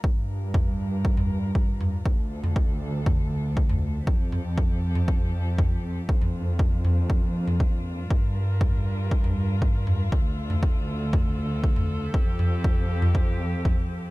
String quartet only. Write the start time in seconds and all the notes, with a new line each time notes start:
0.04 G3 D4 F4 A#4
2.06 D3 D4 A4
4.07 F3 C4 G4 A4
6.09 A#3 D4 F4
8.11 G3 A#4
10.12 D3 A4
12.14 F3 C4 G4